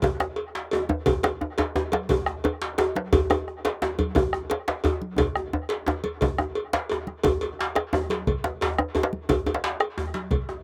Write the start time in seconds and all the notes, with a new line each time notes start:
0.02 bombo low, cowbell, djembe slap, djembe bass, low conga
0.20 bombo rim, djembe slap, djembe tone
0.36 cowbell
0.55 djembe slap
0.71 cowbell, high conga, djembe tone
0.89 high conga, djembe tone
1.06 bombo low, cowbell, djembe tone, low conga, djembe bass
1.23 bombo rim, cowbell, djembe slap, high conga, djembe tone
1.41 bombo rim, djembe slap, djembe tone
1.58 cowbell, djembe slap, djembe tone
1.76 djembe slap, djembe tone
1.92 cowbell, djembe slap, high conga
2.09 bombo low, cowbell, djembe tone, low conga, djembe bass
2.26 bombo rim, djembe slap, djembe tone
2.44 cowbell, djembe tone
2.62 djembe slap
2.78 cowbell, djembe slap, high conga, djembe tone
2.96 djembe slap, high conga
3.13 bombo low, cowbell, djembe bass, low conga
3.30 bombo rim, cowbell, high conga, djembe tone
3.48 bombo rim, djembe slap
3.65 cowbell, djembe slap
3.82 djembe slap, djembe tone
3.99 cowbell, djembe slap, high conga, djembe bass
4.15 bombo low, cowbell, djembe tone, low conga, djembe bass
4.33 bombo rim, djembe slap, djembe tone
4.50 cowbell, djembe slap
4.68 djembe slap
4.84 cowbell, high conga, djembe tone, djembe bass
5.02 high conga
5.18 bombo low, cowbell, djembe slap, high conga, djembe tone, low conga, djembe bass
5.36 bombo rim, djembe tone
5.53 djembe slap, djembe tone
5.69 cowbell, djembe slap
5.86 djembe slap, djembe tone, high conga
6.04 cowbell, high conga
6.21 bombo rim, bombo low, cowbell, djembe slap, djembe tone, low conga, djembe bass
6.38 bombo rim, djembe tone
6.55 cowbell, djembe slap
6.73 djembe slap
6.89 cowbell, djembe slap, high conga, djembe tone
7.07 bombo rim, djembe slap, high conga
7.24 bombo low, cowbell, djembe tone, low conga, djembe bass
7.41 cowbell, djembe slap, djembe tone
7.59 bombo rim, djembe slap
7.75 bombo rim, cowbell, djembe slap
7.93 djembe slap, djembe tone, djembe bass
8.10 cowbell, djembe slap, high conga
8.27 bombo low, cowbell, low conga
8.44 bombo rim, djembe slap, djembe tone
8.61 cowbell, djembe slap, djembe bass
8.78 bombo rim, djembe tone
8.95 cowbell, djembe tone
9.03 djembe slap
9.13 high conga
9.29 bombo low, cowbell, djembe tone, low conga, djembe bass
9.46 cowbell, djembe slap, djembe tone
9.54 djembe slap
9.64 bombo rim, djembe slap
9.80 bombo rim, cowbell, djembe slap
9.98 djembe slap, djembe tone, djembe bass
10.14 djembe slap, high conga
10.31 bombo low, cowbell, low conga
10.49 bombo rim, djembe slap, djembe tone